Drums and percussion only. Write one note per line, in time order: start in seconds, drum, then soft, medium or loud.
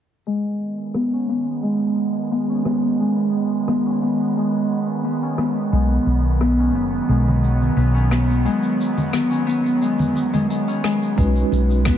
0.27 shaker soft
0.45 shaker soft
0.61 shaker medium
0.79 shaker soft
0.94 cross-stick medium
0.94 shaker medium
1.29 shaker medium
1.47 shaker soft
1.63 shaker medium
1.82 shaker soft
1.97 shaker medium
2.17 shaker soft
2.32 shaker soft
2.51 shaker soft
2.65 cross-stick medium
2.65 shaker medium
2.83 shaker soft
3.00 shaker soft
3.19 shaker soft
3.35 shaker medium
3.52 shaker soft
3.68 cross-stick medium
3.68 shaker soft
4.02 shaker medium
4.19 shaker soft
4.38 shaker soft
4.55 shaker soft
4.71 shaker medium
4.89 shaker soft
5.06 shaker medium
5.23 shaker soft
5.38 cross-stick medium
5.38 shaker medium
5.57 shaker soft
5.74 shaker medium
5.91 shaker soft
6.08 shaker medium
6.25 shaker soft
6.41 cross-stick medium
6.41 shaker medium
6.75 shaker medium
6.94 shaker soft
7.10 shaker medium
7.27 low conga medium
7.27 shaker soft
7.44 shaker medium
7.61 low conga medium
7.61 shaker soft
7.78 shaker medium
7.96 shaker soft
8.11 cross-stick medium
8.11 shaker medium
8.29 shaker soft
8.46 shaker soft
8.63 shaker soft
8.81 shaker medium
8.98 low conga medium
8.98 shaker soft
9.13 cross-stick medium
9.13 shaker medium
9.32 shaker soft
9.49 shaker medium
9.66 shaker soft
9.82 shaker medium
9.99 low conga medium
9.99 shaker soft
10.15 high conga medium
10.15 shaker medium
10.34 low conga medium
10.34 shaker soft
10.50 shaker medium
10.69 shaker soft
10.84 cross-stick medium
10.84 shaker medium
11.02 shaker soft
11.18 kick loud
11.18 shaker medium
11.36 shaker soft
11.52 high conga medium
11.52 shaker medium
11.70 shaker soft
11.85 kick medium
11.85 cross-stick medium
11.85 shaker medium